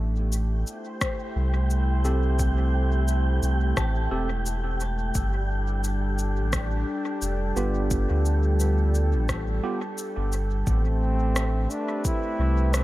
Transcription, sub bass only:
0.00 0.64 A1 medium
1.36 3.40 C2 loud
3.43 3.74 C2 medium
3.77 4.08 A1 loud
4.12 5.12 E1 medium
5.15 6.40 G1 medium
6.38 6.85 A1 medium
7.22 7.53 F1 loud
7.56 8.07 G1 medium
8.10 9.15 D2 medium
9.14 9.61 A1 medium
10.17 10.64 G1 medium
10.67 11.68 A1 loud
12.39 12.84 C2 loud

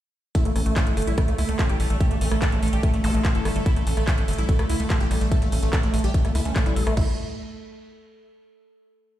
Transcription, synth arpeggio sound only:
0.35 0.37 A3 loud
0.45 0.49 A#3 medium
0.56 0.59 C#4 medium
0.66 0.68 A3 loud
0.76 0.82 C#4 medium
0.87 0.90 A3 medium
0.97 1.03 A3 loud
1.07 1.10 G3 medium
1.18 1.23 A3 loud
1.28 1.32 A#3 medium
1.38 1.41 A3 medium
1.49 1.51 A3 loud
1.59 1.65 C#4 medium
1.70 1.73 E4 medium
1.80 1.85 G3 medium
1.90 1.92 G3 medium
2.01 2.03 A3 loud
2.11 2.15 A#3 medium
2.21 2.25 C#4 medium
2.32 2.34 A3 loud
2.42 2.47 C#4 medium
2.52 2.56 A3 medium
2.63 2.68 A3 loud
2.73 2.75 G3 medium
2.83 2.89 A3 loud
2.94 2.97 A#3 medium
3.04 3.06 A3 medium
3.14 3.17 A3 loud
3.35 3.39 E4 medium
3.45 3.51 G3 medium
3.56 3.58 G3 medium
3.66 3.68 A3 loud
3.76 3.80 A#3 medium
3.87 3.90 C#4 medium
3.97 3.99 A3 loud
4.07 4.13 C#4 medium
4.18 4.21 A3 medium
4.28 4.34 A3 loud
4.38 4.41 G3 medium
4.49 4.54 A3 loud
4.59 4.63 A#3 medium
4.70 4.72 A3 medium
4.80 4.82 A3 loud
4.90 4.96 C#4 medium
5.01 5.04 E4 medium
5.11 5.16 G3 medium
5.21 5.23 G3 medium
5.32 5.34 A3 loud
5.42 5.46 A#3 medium
5.52 5.56 C#4 medium
5.63 5.65 A3 loud
5.73 5.79 C#4 medium
5.83 5.87 A3 medium
5.94 5.99 A3 loud
6.04 6.06 G3 medium
6.14 6.20 A3 loud
6.25 6.28 A#3 medium
6.35 6.39 A3 medium
6.45 6.49 C#4 loud
6.56 6.59 A4 medium
6.66 6.70 G3 loud
6.76 6.82 A4 loud
6.87 6.89 A3 loud
6.97 7.16 A3 loud

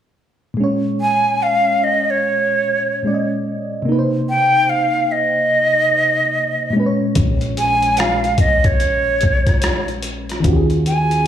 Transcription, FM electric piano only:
0.54 2.99 A#2 medium
0.54 3.00 G#3 medium
0.60 3.02 C#4 medium
0.60 3.03 C#5 medium
3.03 3.86 A#2 soft
3.03 3.87 G#3 soft
3.03 3.88 C#4 soft
3.07 3.14 D5 soft
3.14 3.92 D#5 soft
3.82 6.68 C3 medium
3.82 6.70 A#3 medium
3.89 6.72 D#4 medium
3.89 3.98 B4 medium
3.99 6.76 C5 medium
6.70 9.97 A#2 medium
6.70 9.99 G#3 medium
6.77 10.00 C#4 medium
6.77 6.85 B4 medium
6.86 10.05 C#5 medium
10.40 11.27 D#3 medium
10.40 11.27 C#4 medium
10.45 11.27 F4 medium
10.45 11.27 F#4 medium
10.50 10.56 G4 medium
10.57 11.27 G#4 medium

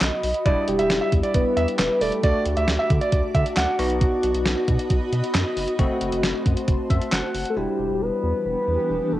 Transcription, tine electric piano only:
0.00 0.20 F#3 medium
0.00 0.20 B3 medium
0.00 0.19 D#4 medium
0.00 0.20 F#4 medium
0.46 2.20 G3 medium
0.46 2.20 D4 medium
0.46 2.20 E4 medium
2.23 3.76 A3 medium
2.23 3.76 D4 medium
2.23 3.76 F#4 medium
3.79 5.75 B3 medium
3.79 5.75 D#4 medium
3.79 5.75 F#4 medium
5.79 7.53 A3 medium
5.79 7.53 C4 medium
5.79 7.53 F#4 medium
6.90 7.11 E5 medium
7.12 7.54 F#5 medium
7.57 9.20 G3 medium
7.57 9.20 D4 medium
7.57 9.20 E4 medium

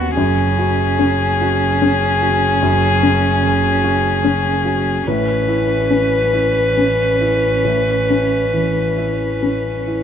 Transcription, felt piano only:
0.00 0.13 D#2 medium
0.00 0.19 D#3 soft
0.00 0.19 C#4 soft
0.00 0.19 F#4 soft
0.17 2.58 F#2 medium
0.59 1.24 F#4 soft
0.99 1.65 C#4 soft
1.41 2.06 F#4 soft
1.82 2.46 C#4 soft
2.22 2.86 F#4 soft
2.62 5.03 F#2 medium
3.03 3.67 C#4 soft
3.43 4.08 C#3 soft
3.84 4.49 F#4 soft
4.24 4.90 C#4 soft
4.65 5.06 F#4 soft
5.07 7.61 A2 soft
5.48 6.16 E4 soft
5.91 6.59 C#4 soft
6.33 7.03 E4 soft
6.77 7.47 C#4 soft
7.21 7.92 E4 soft
7.65 10.03 A2 soft
8.10 8.80 C#4 soft
8.53 9.24 E3 soft
8.98 9.69 E4 soft
9.43 10.03 C#4 soft
9.87 10.03 E4 soft

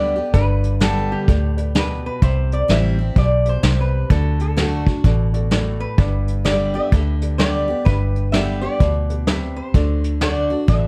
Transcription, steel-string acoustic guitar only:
0.00 0.14 D3 medium
0.00 0.15 G3 medium
0.00 0.15 B3 medium
0.00 0.15 G4 medium
0.16 0.34 B3 medium
0.16 0.33 G4 medium
0.34 1.25 G2 medium
0.80 1.26 D3 medium
0.80 1.26 G3 medium
0.80 1.27 B3 medium
0.80 1.27 G4 medium
1.29 1.73 A2 medium
1.75 2.20 B2 medium
2.22 3.13 C3 medium
2.68 2.97 E3 medium
2.68 2.97 G3 medium
2.68 2.98 C4 medium
2.68 2.97 E4 medium
2.99 3.17 C4 soft
2.99 3.15 E4 medium
3.16 3.61 B2 medium
3.63 4.08 C3 loud
4.10 4.55 D3 medium
4.57 4.85 D3 medium
4.57 4.85 A3 medium
4.57 4.86 D4 medium
4.57 4.85 F#4 medium
4.86 5.05 D4 soft
4.86 5.04 F#4 medium
5.04 5.50 B2 medium
5.51 5.96 A2 medium
5.98 6.89 G2 medium
6.45 6.73 D3 medium
6.45 6.74 G3 medium
6.45 6.74 B3 loud
6.45 6.73 G4 medium
6.74 6.92 B3 soft
6.74 6.91 G4 medium
6.92 7.38 D3 medium
7.39 7.67 D3 medium
7.39 7.68 G3 medium
7.39 7.68 B3 medium
7.39 7.67 G4 loud
7.68 7.87 B3 soft
7.68 7.85 G4 medium
7.86 8.77 G2 medium
8.33 8.62 D3 medium
8.33 8.62 G3 loud
8.33 8.62 B3 medium
8.33 8.61 G4 loud
8.62 8.81 B3 soft
8.62 8.80 G4 medium
8.80 9.26 B2 medium
9.28 9.73 C3 medium
9.75 10.20 D3 medium
10.21 10.50 D3 medium
10.21 10.50 A3 medium
10.21 10.50 D4 loud
10.21 10.49 F#4 medium
10.50 10.69 D4 soft
10.50 10.67 F#4 medium
10.68 10.88 B2 medium

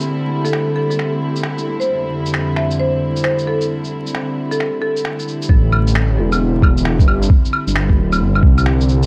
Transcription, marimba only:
0.45 0.68 A4 medium
0.76 0.85 A4 medium
0.90 0.96 A4 medium
1.80 1.94 C5 medium
2.57 2.77 E5 medium
2.79 3.03 C5 medium
3.24 3.45 C5 medium
3.47 3.71 A4 medium
4.51 4.75 A4 medium
4.82 5.46 A4 medium

